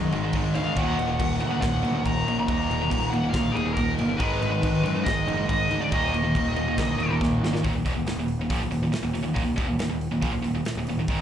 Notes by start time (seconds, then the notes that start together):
Already playing: F#2 G#2 D#3 G#3
0.12 G#1 G#2 D#3, crash
0.23 G#2 D#3
0.33 G#1 G#2 D#3, kick, crash
0.55 D2 G#2 D#3 F5, crash
0.66 G#2 D#3
0.76 D#1 D#2 A#2 D#3 F#5, kick, crash
0.96 D#1 D#2 A#2, crash
1.07 D#2 A#2
1.19 D#1 D#2 A#2, kick, crash
1.40 D2 D#2 A#2, crash
1.51 D#2 A#2
1.61 D#1 D#2 A#2 D#3 F#5, kick, snare, crash
1.83 D2 D#2 A#2, crash
1.95 D#2 A#2
2.05 D#1 D#2 A#2 A#5, kick, crash
2.25 A#1 D#2 A#2, crash
2.39 D#2 A#2
2.48 D#1 D#2 A#2 D#3 A#5, kick, crash
2.70 D#2 A#2, crash
2.81 D#2 A#2
2.90 D#1 D#2 A#2, kick, crash
3.10 D#1 D#2 A#2 F#5, crash
3.24 D#2 A#2
3.30 D2 D#2 A#2 F5, kick, crash
3.35 D#3, snare
3.52 D#1 A#2 G#4
3.56 D#2, crash
3.65 D#2 A#2
3.73 D#1 A#2 A#4, kick, crash
3.78 D#2
3.98 G1 D#2 A#2, crash
4.09 D#2 A#2
4.17 G#1 G#2 D#3 G#3 B4, kick, crash
4.41 G#1 G#2 D#3, crash
4.50 G#2 D#3
4.61 G#1 G#2 D#3, kick, crash
4.83 F#2 G#2 D#3, crash
4.95 G#2 D#3
5.04 G#1 G#2 D#3 D#5, kick, crash
5.08 G#3, snare
5.26 F#1 G#2 D#3, crash
5.38 G#2 D#3
5.49 G#1 G#2 D#3 D#5, kick, crash
5.69 D2 G#2 D#3, crash
5.81 G#2 D#3 D5
5.91 D#1 D#2 A#2 D#3 D#5, kick, crash
6.13 D#2 A#2, crash
6.23 D#2 A#2
6.35 D#1 D#2 A#2, kick, crash
6.56 D#1 D#2 A#2, crash
6.68 D#2 A#2
6.77 D2 D#2 A#2 D#3, kick, snare, crash
6.98 D#1 D#2 A#2, crash
7.10 D#2 A#2
7.20 D#1 D#2 A#2, kick, snare
7.40 G#1 D#2
7.44 A#2, snare
7.53 D#2 A#2, snare
7.64 D#1 D#2 A#2, kick, open hi-hat
7.73 D#1 D#2 A#2
7.85 E1 E2 B2, kick, open hi-hat
7.95 D#1 D#2 A#2
8.05 D#1 D#2 A#2, snare, open hi-hat
8.15 D#1 D#2
8.19 A#2
8.28 open hi-hat
8.38 D#1 D#2 A#2
8.50 A#1 A#2 F3, kick, open hi-hat
8.59 D#1 D#2 A#2
8.70 D#1 D#2 A#2, open hi-hat
8.80 D#1 D#2 A#2
8.92 muted distorted electric guitar stroke, muted picked electric bass stroke, snare, open hi-hat
9.03 D#1 D#2 A#2
9.13 D#1 D#2 A#2, open hi-hat
9.23 D#1 D#2 A#2
9.34 D#1 D#2 A#2, kick, open hi-hat
9.44 D#1 D#2 A#2
9.56 E1 E2 B2, kick, open hi-hat
9.68 D#1 D#2 A#2
9.78 D#1 D#2 A#2, snare, open hi-hat
9.90 D#1 D#2 A#2
10.01 open hi-hat
10.11 D#1 D#2 A#2
10.22 A#1 A#2 F3, kick, open hi-hat
10.32 D#1 D#2 A#2
10.42 D#1 D#2 A#2, open hi-hat
10.54 D#1 D#2 A#2
10.65 muted picked electric bass stroke, muted distorted electric guitar stroke, snare, open hi-hat
10.75 D#1 D#2 A#2
10.86 D#1 D#2 A#2, open hi-hat
10.97 D#1 D#2 A#2
11.07 G#1 G#2 D#3, kick, open hi-hat
11.18 G#1